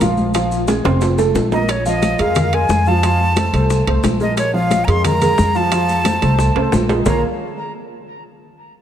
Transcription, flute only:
0, 0, Header, 1, 2, 480
1, 0, Start_track
1, 0, Tempo, 335383
1, 495, Time_signature, 4, 2, 24, 8
1, 12620, End_track
2, 0, Start_track
2, 0, Title_t, "Flute"
2, 0, Program_c, 0, 73
2, 2192, Note_on_c, 0, 75, 83
2, 2441, Note_on_c, 0, 73, 78
2, 2462, Note_off_c, 0, 75, 0
2, 2671, Note_off_c, 0, 73, 0
2, 2687, Note_on_c, 0, 75, 93
2, 3168, Note_on_c, 0, 77, 96
2, 3190, Note_off_c, 0, 75, 0
2, 3637, Note_on_c, 0, 80, 104
2, 3659, Note_off_c, 0, 77, 0
2, 4124, Note_on_c, 0, 81, 107
2, 4145, Note_off_c, 0, 80, 0
2, 5554, Note_off_c, 0, 81, 0
2, 6038, Note_on_c, 0, 75, 88
2, 6254, Note_off_c, 0, 75, 0
2, 6271, Note_on_c, 0, 73, 89
2, 6490, Note_off_c, 0, 73, 0
2, 6513, Note_on_c, 0, 77, 100
2, 6935, Note_on_c, 0, 82, 73
2, 6957, Note_off_c, 0, 77, 0
2, 7009, Note_on_c, 0, 84, 98
2, 7030, Note_off_c, 0, 82, 0
2, 7232, Note_off_c, 0, 84, 0
2, 7241, Note_on_c, 0, 82, 115
2, 7964, Note_on_c, 0, 81, 113
2, 7986, Note_off_c, 0, 82, 0
2, 9630, Note_off_c, 0, 81, 0
2, 10123, Note_on_c, 0, 82, 83
2, 10334, Note_off_c, 0, 82, 0
2, 12620, End_track
0, 0, End_of_file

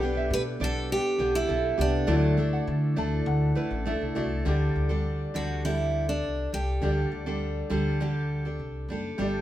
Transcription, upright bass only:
0, 0, Header, 1, 2, 480
1, 0, Start_track
1, 0, Key_signature, 2, "major"
1, 0, Tempo, 592300
1, 1693, Time_signature, 4, 2, 24, 8
1, 7629, End_track
2, 0, Start_track
2, 0, Title_t, "Upright bass"
2, 0, Program_c, 0, 32
2, 0, Note_on_c, 0, 35, 96
2, 247, Note_on_c, 0, 47, 97
2, 259, Note_off_c, 0, 35, 0
2, 447, Note_off_c, 0, 47, 0
2, 487, Note_on_c, 0, 35, 91
2, 785, Note_off_c, 0, 35, 0
2, 966, Note_on_c, 0, 35, 96
2, 1166, Note_off_c, 0, 35, 0
2, 1210, Note_on_c, 0, 35, 90
2, 1408, Note_off_c, 0, 35, 0
2, 1448, Note_on_c, 0, 36, 96
2, 1647, Note_off_c, 0, 36, 0
2, 1683, Note_on_c, 0, 38, 107
2, 2080, Note_off_c, 0, 38, 0
2, 2167, Note_on_c, 0, 50, 99
2, 2366, Note_off_c, 0, 50, 0
2, 2409, Note_on_c, 0, 38, 86
2, 2607, Note_off_c, 0, 38, 0
2, 2643, Note_on_c, 0, 38, 109
2, 2843, Note_off_c, 0, 38, 0
2, 3004, Note_on_c, 0, 33, 87
2, 3203, Note_off_c, 0, 33, 0
2, 3252, Note_on_c, 0, 36, 73
2, 3350, Note_off_c, 0, 36, 0
2, 3372, Note_on_c, 0, 36, 93
2, 3569, Note_off_c, 0, 36, 0
2, 3615, Note_on_c, 0, 38, 86
2, 3810, Note_off_c, 0, 38, 0
2, 3853, Note_on_c, 0, 38, 88
2, 4246, Note_off_c, 0, 38, 0
2, 4334, Note_on_c, 0, 38, 75
2, 5021, Note_off_c, 0, 38, 0
2, 5059, Note_on_c, 0, 36, 73
2, 5253, Note_off_c, 0, 36, 0
2, 5297, Note_on_c, 0, 36, 79
2, 5492, Note_off_c, 0, 36, 0
2, 5522, Note_on_c, 0, 38, 92
2, 5723, Note_off_c, 0, 38, 0
2, 5767, Note_on_c, 0, 38, 80
2, 6164, Note_off_c, 0, 38, 0
2, 6245, Note_on_c, 0, 38, 75
2, 6938, Note_off_c, 0, 38, 0
2, 6963, Note_on_c, 0, 36, 73
2, 7165, Note_off_c, 0, 36, 0
2, 7200, Note_on_c, 0, 30, 88
2, 7403, Note_off_c, 0, 30, 0
2, 7445, Note_on_c, 0, 31, 99
2, 7629, Note_off_c, 0, 31, 0
2, 7629, End_track
0, 0, End_of_file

